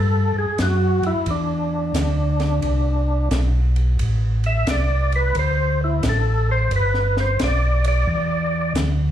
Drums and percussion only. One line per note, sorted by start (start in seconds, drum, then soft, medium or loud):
0.58 kick soft
0.58 snare medium
0.58 hi-hat pedal medium
0.58 ride medium
1.03 ride soft
1.26 kick soft
1.26 ride medium
1.94 kick soft
1.94 snare medium
1.94 hi-hat pedal medium
1.94 ride medium
2.40 snare soft
2.40 ride soft
2.62 kick soft
2.62 ride medium
3.31 kick soft
3.31 snare medium
3.31 hi-hat pedal medium
3.31 ride medium
3.76 ride soft
3.99 kick soft
3.99 ride medium
4.44 ride soft
4.67 kick soft
4.67 snare medium
4.67 hi-hat pedal medium
4.67 ride medium
5.12 ride soft
5.35 kick soft
5.35 ride medium
6.03 kick soft
6.03 snare medium
6.03 hi-hat pedal medium
6.03 ride medium
6.71 kick soft
6.71 ride medium
6.94 snare soft
7.17 snare soft
7.39 kick soft
7.39 snare medium
7.39 hi-hat pedal medium
7.39 ride medium
7.84 ride medium
8.08 kick soft
8.75 kick soft
8.75 snare medium
8.75 hi-hat pedal medium
8.75 ride medium